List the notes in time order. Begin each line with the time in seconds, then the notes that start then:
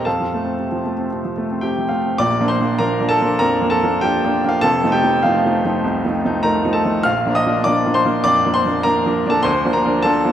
0.05 F2 A4 F5 A5
0.20 F3
0.34 A3
0.45 C4
0.60 C3
0.72 F3
0.86 A3
0.99 C4
1.12 C3
1.25 F3
1.38 A3
1.51 C4
1.61 C3 G4 G5
1.78 F3
1.89 A3 F4 F5
2.05 C4
2.18 A#1 A#2 D5 D6
2.40 F3 A#3 D4
2.48 C5 C6
2.60 F3 A#3 D4
2.79 F3 A#3 D4 A#4 A#5
3.00 F3 A#3 D4
3.09 A4 A5
3.21 F3 A#3 D4
3.39 F2 A#4 A#5
3.62 F3 A#3 D4
3.70 A4 A5
3.83 F3 A#3 D4
4.01 F3 A#3 D4 G4 G5
4.24 F3 A#3 D4
4.44 F3 A#3 D4
4.49 F4 F5
4.61 F1 F2 A4 A5
4.84 F3 A3 D#4
4.92 G4 G5
5.03 F3 A3 D#4
5.23 F3 A3 D#4 F4 F5
5.46 F3 A3 D#4
5.65 F3 A3 D#4
5.84 C2
6.05 F3 A3 D#4
6.25 F3 A3 D#4
6.43 F3 A3 D#4 A#4 A#5
6.65 F3 A3 D#4
6.73 A4 A5
6.85 F3 A3 D#4
7.03 A#1 F5 F6
7.26 F3 A#3 D4
7.35 D#5 D#6
7.46 F3 A#3 D4
7.64 F3 A#3 D4 D5 D6
7.86 F3 A#3 D4
7.94 C5 C6
8.05 F3 A#3 D4
8.24 F2 D5 D6
8.46 F3 A#3 D4
8.54 C5 C6
8.65 F3 A#3 D4
8.83 F3 A#3 D4 A#4 A#5
9.06 F3 A#3 D4
9.26 F3 A#3 D4
9.30 A4 A5
9.43 D2 C5 C6
9.65 F3 A#3 D4
9.73 A#4 A#5
9.85 F3 A#3 D4
10.02 F3 A#3 D4 A4 A5
10.25 F3 A#3 D4